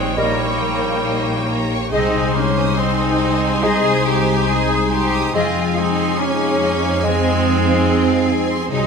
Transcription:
Already playing: A#1 A#2 G3 G#3 A#3 C4 D#4 C#5 G5
0.17 A#2 G3 A#3 D#4 A#4 D#5 A#5
0.39 C#6
0.61 G3 A#5
0.84 G5
1.05 A#3 D#5
1.28 G5
1.49 G3 A#5
1.71 C#6
1.92 C2 C3 G#3 C4 D#4 G#4 C5 D#5 G#5
2.14 G#5
2.34 G#3 A#3 C#4 C6
2.57 D#6
2.78 G#3 C4 D#4 C6
3.00 G#5
3.21 G#3 D#5
3.42 G#5
3.62 C3 G#3 D#4 G#4 D#5 C6
3.84 D#6
4.05 C4 D#4 G4 C6
4.26 G#5
4.48 G#3 D#4 G#4 D#5
4.70 G#5
4.91 C4 D#4 G4 C6
5.14 D#6
5.34 F2 F3 G#3 C4 D#4 F4 G#4 D#5 G#5
5.57 F5
5.77 G#3 C4 D#4 G#5
5.99 C6
6.19 A#3 C#4 D#4 G#5
6.42 F5
6.61 G#3 D#5
6.84 F5
7.03 F3 G#3 C4 D#4 G#4 D#5 G#5
7.24 C6
7.45 D#4 G#5
7.66 F5
7.87 G#3 D#5
8.08 F5
8.29 D#4 G#5
8.50 C6
8.71 C2 C3 F#3 G#3 C4 D#4 F#4 G#4 C5 D#5 G#5

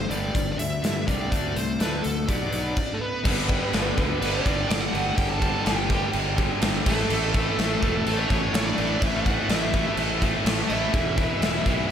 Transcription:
Already playing: C5
0.09 G1 G2 D3 G3 D5, closed hi-hat
0.33 G1 G2 D3, kick, closed hi-hat
0.52 D5
0.57 D2 G2 D3 E5, closed hi-hat
0.82 G2 D3, snare, closed hi-hat
1.07 C2 G2 D3 G3 D5, kick, closed hi-hat
1.31 D2 D3 A3 D4 D5, kick, closed hi-hat
1.55 C2 D3 A3 C5, closed hi-hat
1.79 D2 D3 A3 D4 B4, snare, closed hi-hat
2.03 D2 D3 A3 A4, closed hi-hat
2.27 B1 B2 F#3 B3 D5, kick, closed hi-hat
2.51 B1 B2 F#3 B3, closed hi-hat
2.77 kick, crash
2.93 A3 A4
3.01 B3 B4
3.24 G1 G2 D3 G3, kick, crash
3.47 G2 D3 G3, kick, crash
3.71 G1 G2 D3 G3, snare, crash
3.96 D2 G2 D3 G3, kick, crash
4.20 G1 G2 D3 G3 B3 B4, crash
4.33 D4 D5
4.44 G1 G2 D3 G3, kick, crash
4.68 G1 G2 D3 G3 D4 D5, snare, crash
4.80 F#4 F#5
4.92 G1 G2 D3 G3, crash
5.16 G1 G2 D3 G3 G4 G5, kick, crash
5.29 A4 A5
5.40 G2 D3 G3, kick, crash
5.64 G1 G2 D3 G3 G4 G5, snare, crash
5.89 G2 D3 G3, kick, crash
6.13 G1 G2 D3 G3, crash
6.36 G2 D3 G3, kick, crash
6.60 G1 G2 D3 G3, snare, crash
6.83 A1 A2 E3 A3 A4, kick, crash
7.09 A1 A2 E3 A3, crash
7.32 A2 E3 A3, kick, crash
7.57 A1 A2 E3 A3, snare, crash
7.81 E1 A2 E3 A3, kick, crash
8.04 A1 A2 E3 A3 A4, crash
8.17 C#4 C#5
8.29 A1 A2 E3 A3, kick, crash
8.52 A1 A2 E3 A3 C#4 C#5, snare, crash
8.66 D4 D5
8.78 A1 A2 E3 A3, crash
9.01 A1 A2 E3 A3 E4 E5, kick, crash
9.14 F#4 F#5
9.25 A2 E3 A3, kick, crash
9.49 A1 A2 E3 A3 E4 E5, snare, crash
9.74 A2 E3 A3, kick, crash
9.97 A1 A2 E3 A3, crash
10.21 A2 E3 A3, kick, crash
10.45 A1 A2 E3 A3, snare, crash
10.69 A1 A2 E3 A3 E4 E5, crash
10.93 E1 E2 B2 E3, kick, crash
11.17 E2 B2 E3, kick, crash
11.41 E1 E2 B2 E3, snare, crash
11.64 B1 E2 B2 E3, kick, crash
11.88 E2 E4 E5

